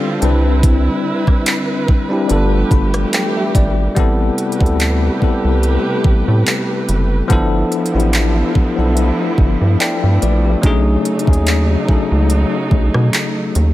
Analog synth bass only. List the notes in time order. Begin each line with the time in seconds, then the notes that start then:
0.22 C2
2.30 G1
2.71 G1
3.55 G#1
3.97 A1
4.61 D2
5.22 C2
5.44 C2
6.05 A1
6.28 A2
6.89 F#1
7.30 G1
7.95 A1
8.55 B1
8.78 B1
9.38 G1
9.61 G2
10.03 G2
10.22 A#1
10.64 B1
11.28 D#2
11.89 C#2
12.12 C#2
12.71 B1
12.95 B2
13.56 D#2